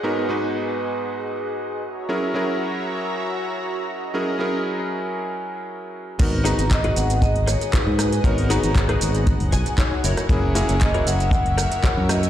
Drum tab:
CC |----------------|----------------|----------------|x---------------|
HH |----------------|----------------|----------------|x-oxxxoxxxoxx-ox|
SH |----------------|----------------|----------------|x-xxx-xxx-xxx-xx|
CP |----------------|----------------|----------------|----x-------x---|
SD |----------------|----------------|----------------|----------r---r-|
BD |----------------|----------------|----------------|o---o---o---o---|

CC |----------------|----------------|
HH |xooxxxoxxooxx-ox|x-oxxxoxxxoxx-ox|
SH |x-xxx-xxx-xxx-xx|x-xxx-xxx-xxx-xx|
CP |----x-------x---|----x-------x---|
SD |-----r---------r|----------r---r-|
BD |o---o---o-o-o---|o---o---o---o---|